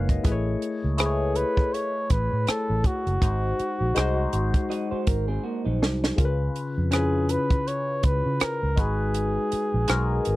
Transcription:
Already playing: F#1 G#3 A#3 D#4 F#4 B4 C#5 D#5 F5 F#5 G#5
0.09 A#4 D#5, kick, closed hi-hat
0.23 A1 A3 E4 G#4 B4, kick, closed hi-hat
0.32 C#5
0.62 closed hi-hat
0.84 C#2
0.97 A3 E4 G#4 B4, cross-stick, closed hi-hat
1.06 C#5
1.35 B4, closed hi-hat
1.57 kick
1.73 C#5, closed hi-hat
2.10 A1 B4, kick, closed hi-hat
2.33 A2
2.47 A4, muted fingered electric bass stroke, cross-stick, closed hi-hat
2.70 A1
2.84 F#4, kick, closed hi-hat
3.07 F#1, closed hi-hat
3.21 G#1 G#3 D#4 F#4 C5, kick, closed hi-hat
3.59 muted fingered electric bass stroke, closed hi-hat
3.81 A#1
3.94 C2 G#3 D#4 F#4 C5, cross-stick, closed hi-hat
4.33 G#1, closed hi-hat
4.54 kick, closed hi-hat
4.70 F#4 D#5, closed hi-hat
4.91 D#4 C5, muted fingered electric bass stroke
5.07 G#1 A#4, kick, closed hi-hat
5.28 C4 G#4
5.44 A#3 F#4
5.65 A#1 F#3 D#4
5.82 C2, snare
6.04 snare
6.16 C#2 C#3 C#4 F4 A#4, kick, closed hi-hat
6.25 B4
6.56 closed hi-hat
6.78 F2
6.91 C#3 C#4 E4 G#4 B4, cross-stick, closed hi-hat
6.98 F4
7.29 B4, closed hi-hat
7.50 kick, closed hi-hat
7.68 C#5, closed hi-hat
8.03 C#2 B4, kick, closed hi-hat
8.26 C#3
8.40 A#4, muted fingered electric bass stroke, cross-stick, closed hi-hat
8.63 C#2
8.76 G#1 G#3 D#4 F#4 B4, kick, closed hi-hat
8.81 G#4
9.14 closed hi-hat
9.52 muted fingered electric bass stroke, closed hi-hat
9.74 A#1
9.88 B1 G#3 D#4 F#4 A#4, cross-stick, closed hi-hat
10.25 G#1, closed hi-hat

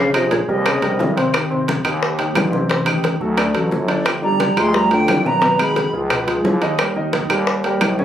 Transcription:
Already playing: A#1 C#3 C#4 C#5 F5
0.13 C3 F3 F4 G#4 D#5, high conga, high timbale, claves
0.30 A#2 C#5, high bongo, high conga, high timbale
0.48 D#2 C3 G3 G4 A#4 D#5, high bongo, high conga
0.65 C#3 C#4 C#5, high bongo, high conga, high timbale, claves
0.82 A#1 G3 G4 A#4, high bongo, high conga, high timbale
0.99 G#1, high bongo, low bongo, high conga, low timbale
1.16 C3 C4 C5, high bongo, high timbale
1.34 D#3 D#4 G4, high bongo, high conga, high timbale, claves
1.50 C3 C4 C5, high conga
1.68 high bongo, high conga, high timbale
1.85 D#2 D#3 D#4 G4, high bongo, high conga, high timbale, claves
2.02 high bongo, high conga
2.19 D#3 D#4 G4, high bongo, high conga, high timbale
2.35 A1, high bongo, low bongo, high conga, high timbale, low timbale, claves
2.51 C3 C4 C5, high bongo, high conga
2.69 C3 C4 C5, high bongo, high conga, high timbale
2.86 D#3 D#4 G4, high conga, high timbale, claves
3.04 high bongo, high conga, high timbale
3.20 D2 F#3 F#4 A4, high bongo, high conga
3.37 D3 D4 D5, high bongo, high conga, high timbale, claves
3.54 A1 F#3 F#4 A4, high bongo, high conga, high timbale
3.71 G1, high bongo, low bongo, high conga
3.88 D3 D4 D5, high bongo, high timbale
4.05 F3 F4 G4, high bongo, high conga, high timbale, claves
4.22 D3 G3 D4 D5 A#5, high conga
4.40 high bongo, high conga, high timbale
4.56 D2 F3 G#3 F4 G4 C6, high bongo, high conga, high timbale, claves
4.74 G3 A#5, high bongo, high conga
4.91 D3 F3 F4 G4 G5, high bongo, high conga, high timbale
5.08 G#1, high bongo, low bongo, high conga, high timbale, low timbale, claves
5.24 B2 F#3 B3 B4 A#5, high bongo, high conga
5.42 B2 B3 B4, high bongo, high conga, high timbale
5.59 D#3 G#3 D#4 F#4 B5, high conga, high timbale, claves
5.76 high bongo, high conga, high timbale
5.93 C#2 F3 F4 G#4, high bongo, high conga
6.10 B2 B3 B4, high bongo, high conga, high timbale, claves
6.27 F3 F4 G#4, high bongo, high conga, high timbale
6.44 D#2, high bongo, low bongo, high conga, low timbale
6.62 D#3 D#4 D#5, high bongo, high timbale
6.79 G3 G4 A#4, high bongo, high conga, high timbale, claves
6.96 D#3 D#4 D#5, high conga
7.13 high bongo, high conga, high timbale
7.30 D#2 G3 G4 A#4, high bongo, high conga, high timbale, claves
7.47 high bongo, high conga
7.64 G3 G4 A#4, high bongo, high conga, high timbale
7.81 A#1, high bongo, low bongo, high conga, high timbale, low timbale, claves
7.98 C#3 C#4 C#5, high bongo, high conga

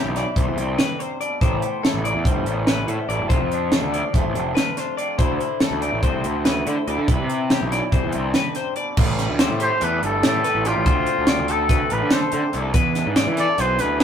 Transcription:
Already playing: C3 C4 E4 G4
0.04 B1
0.15 E3 D5, snare, closed hi-hat
0.36 C2 C5, kick, closed hi-hat
0.47 E2
0.57 C2 G2 C4, closed hi-hat
0.78 D3 B4, snare, closed hi-hat
0.99 C3 C5, closed hi-hat
1.21 B2 D5, closed hi-hat
1.41 A1 A2 G4 C5, kick, closed hi-hat
1.62 B3, closed hi-hat
1.83 E4 A4, snare, closed hi-hat
1.94 A1
2.04 E3 D5, closed hi-hat
2.15 E2
2.25 G1 G3 C5, kick, closed hi-hat
2.46 A1 E2 B3, closed hi-hat
2.67 E4 B4, snare, closed hi-hat
2.87 A2 B3 C5, closed hi-hat
3.09 A1 A2 E4 D5, closed hi-hat
3.19 F#1
3.29 F1 F2 F4 C5, kick, closed hi-hat
3.40 F2
3.51 D4, closed hi-hat
3.72 F4 A4, snare, closed hi-hat
3.82 D2
3.93 F3 D5, closed hi-hat
4.14 F1 A3 C5, kick, closed hi-hat
4.25 A1
4.34 F1 C3 D4, closed hi-hat
4.55 F4 B4, snare, closed hi-hat
4.77 D4 C5, snare, closed hi-hat
4.97 F2 F4 D5, closed hi-hat
5.18 D2 D3 E4 C5, kick, closed hi-hat
5.40 E4, closed hi-hat
5.60 E4 A4, snare, closed hi-hat
5.71 D2
5.82 A3 D5, closed hi-hat
5.92 A1
6.03 C2 C4 C5, kick, closed hi-hat
6.24 D2 A2 E4, closed hi-hat
6.45 E4 B4, snare, closed hi-hat
6.66 D3 E4 C5, closed hi-hat
6.88 D2 D3 E4 D5, closed hi-hat
6.99 D3
7.08 C2 C3 E4 B4, kick, closed hi-hat
7.20 C3
7.30 C4, closed hi-hat
7.50 E4 G4, snare, closed hi-hat
7.62 B1
7.71 E3 D5, snare, closed hi-hat
7.92 C2 C5, kick, closed hi-hat
8.04 E2
8.12 C2 G2 C4, closed hi-hat
8.34 D3 B4, snare, closed hi-hat
8.55 C3 C5, snare, closed hi-hat
8.76 B2 D5, closed hi-hat
8.97 A1 A2 G3 B4, kick, crash
9.19 B3, snare, closed hi-hat
9.30 D2
9.39 G4 C5, snare, closed hi-hat
9.50 A2
9.60 E3 G4 C5, closed hi-hat
9.81 E2 G3 A4 B4, closed hi-hat
10.02 G1 B3 A4, closed hi-hat
10.23 E2 A2 G4, snare, closed hi-hat
10.27 A4
10.44 G4 B4, snare, closed hi-hat
10.55 A1
10.65 A2 G3 F4 G4, snare, closed hi-hat
10.76 A1
10.86 D2 D3 C4 C5, kick, closed hi-hat
11.06 C4, closed hi-hat
11.19 D2
11.27 C4 D5, snare, closed hi-hat
11.39 D2
11.48 A3 A4, closed hi-hat
11.52 A4
11.69 D2 C4 B4, kick, snare, closed hi-hat
11.90 A1 F4 B4, closed hi-hat
12.02 D3
12.10 B2 A4 C5, snare, closed hi-hat
12.32 C3 D3 C5, closed hi-hat
12.53 C2 D3 A4, closed hi-hat
12.74 E2 G#3 B4, kick, closed hi-hat
12.95 D4, snare, closed hi-hat
13.06 G#2
13.16 F4 D5, snare, closed hi-hat
13.27 E3
13.36 E3 A4 D5, snare, closed hi-hat
13.58 B1 G#3 B4 C5, snare, closed hi-hat
13.79 D2 D4 B4, snare, closed hi-hat
14.00 B2 E3 G#4, snare, closed hi-hat

